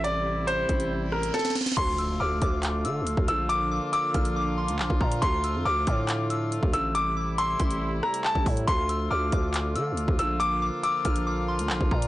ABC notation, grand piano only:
X:1
M:4/4
L:1/8
Q:1/4=139
K:Dm
V:1 name="Grand piano"
d2 c2 z B A z | c'2 d'4- d' e' | d'2 d'6 | c'2 d'4- d' e' |
d'2 c'2 z b a z | c'2 d'4- d' e' | d'2 d'6 |]